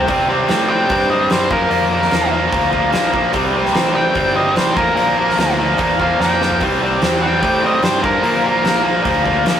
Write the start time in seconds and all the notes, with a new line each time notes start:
0.08 C3 G3 C4, kick, open hi-hat
0.28 C3 G3 C4
0.48 A2 C3 G3 C4, snare, open hi-hat
0.70 C3 G3 C4 G5
0.89 G2 C3 G3 C4, kick, open hi-hat
1.09 C3 G3 C4 D#5
1.30 F#2 C3 G3 C4 C5, snare, open hi-hat
1.49 A#2 F3 A#3, kick
1.53 A#4
1.69 F2 A#2 F3 A#3, open hi-hat
1.90 A#2 F3 A#3
2.02 snare
2.10 E2 A#2 F3 A#3, snare, open hi-hat
2.29 A#2 F3 A#3
2.51 D2 A#2 F3 A#3, kick, open hi-hat
2.70 A#2 F3 A#3, kick
2.90 A#1 A#2 F3 A#3, snare, open hi-hat
3.12 A#2 F3 A#3, kick
3.33 C2 C3 G3 C4, kick, open hi-hat
3.53 C3 G3 C4
3.66 snare
3.72 A1 C3 G3 C4, snare, open hi-hat
3.92 C3 G3 C4 G5
4.13 G1 C3 G3 C4, kick, open hi-hat
4.34 C3 G3 C4 D#5
4.54 A1 C3 G3 C4 C5, snare, open hi-hat
4.74 A#2 F3 A#3 A#4, kick
4.95 A#1 A#2 F3 A#3, open hi-hat
5.17 A#2 F3 A#3
5.30 snare
5.37 D2 A#2 F3 A#3, snare, open hi-hat
5.58 A#2 F3 A#3
5.76 E2 A#2 F3 A#3, kick, open hi-hat
5.99 A#2 F3 A#3 F5, kick
6.19 F2 A#2 F3 A#3 G5, snare
6.41 A#2 F3 A#3, snare
6.50 floor tom
6.60 C2 C3 G3 C4, kick, open hi-hat
6.80 C3 G3 C4
7.01 E2 C3 G3 C4, snare, open hi-hat
7.21 C3 G3 C4 G5
7.40 A2 C3 G3 C4, kick, open hi-hat
7.62 C3 G3 C4
7.66 D#5
7.83 G2 C3 G3 C4 C5, snare, open hi-hat
8.01 A#2 F3 A#3, kick
8.05 A#4
8.22 A#2 F3 A#3, open hi-hat
8.43 A#2 F3 A#3
8.63 A#1 A#2 F3 A#3, snare, open hi-hat
8.82 A#2 F3 A#3
9.02 D2 A#2 F3 A#3, kick, open hi-hat
9.23 A#2 F3 A#3, kick
9.45 A#1 A#2 F3 A#3, snare, open hi-hat